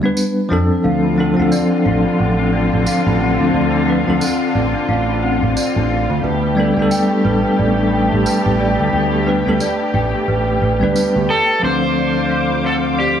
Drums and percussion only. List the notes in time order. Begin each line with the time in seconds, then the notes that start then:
0.17 tambourine
1.52 tambourine
2.87 tambourine
4.21 tambourine
5.57 tambourine
6.91 tambourine
8.26 tambourine
9.60 tambourine
10.96 tambourine